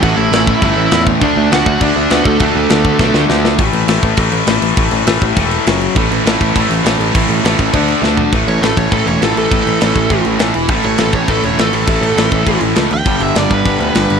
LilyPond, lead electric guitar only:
\new Staff \with { instrumentName = "Lead electric guitar" } { \time 4/4 \key a \mixolydian \tempo 4 = 203 <fis' fis''>8 <e' e''>2. r8 | <d' d''>4 <fis' fis''>4 <d' d''>4 <b b'>8 <a a'>8~ | <a a'>2. r4 | r1 |
r1 | r1 | r1 | r8 cis''8 a'8 cis''8 a'8 cis''8 a'8 a'8~ |
a'2~ a'8 r4. | r8 cis''8 a'8 cis''8 a'8 cis''8 a'8 a'8~ | a'2~ a'8 r4 g''8~ | g''8 e''8 d''8 b'2~ b'8 | }